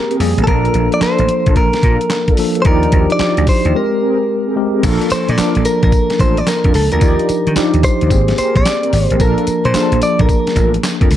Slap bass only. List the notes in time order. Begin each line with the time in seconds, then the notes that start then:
0.20 F2
0.38 A1
0.47 A#1
0.74 A#1
1.01 muted slap bass stroke
1.19 A1
1.47 A#1
1.56 A#1
1.83 A#2
2.65 D#2
2.93 D#2
3.20 muted slap bass stroke
3.38 D2
3.65 D#2
4.83 A#1
5.11 muted slap bass stroke
5.29 A#2
5.39 muted slap bass stroke
5.56 A#1
5.83 A#1
6.20 A1
6.65 F2
6.75 C#2
6.93 D2
7.02 D#2
7.29 muted slap bass stroke
7.47 D#3
7.56 muted slap bass stroke
7.74 D#2
8.02 D#2
8.11 G#1
8.39 muted slap bass stroke
8.56 A#1
8.93 G#1
9.11 A1
9.20 A#1
9.48 muted slap bass stroke
9.65 A#2
9.74 muted slap bass stroke
9.92 A#1
10.20 A#1
10.56 A1
11.01 F2
11.11 C#2